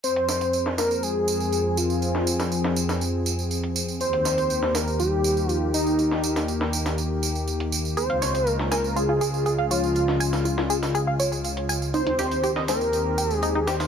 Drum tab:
HH |-x-x------------|-------------x--|-x-x------------|-------------x--|
TB |x-xxx-xxx-xxx-xx|x-xxx-xxx-xxx-xx|x-xxx-xxx-xxx-xx|x-xxx-xxx-xxx-xx|
SH |x-x-x-x-x-x-x-x-|x-x-x-x-x-x-x-x-|x-x-x-x-x-x-x-x-|x-x-x-x-x-x-x-x-|
SD |--o--oo---------|-o-o-o-o--------|--o--oo---------|-o-o-o-o--------|

HH |-x-x------------|-------------x--|-x-x------------|
TB |x-xxx-xxx-xxx-xx|x-xxx-xxx-xxx-xx|x-xxx-xxx-xxx-xx|
SH |x-x-x-x-x-x-x-x-|x-x-x-x-x-x-x-x-|x-x-x-x-x-x-x-xx|
SD |--o--oo---------|-o-o-o-o--------|--o--oo-------oo|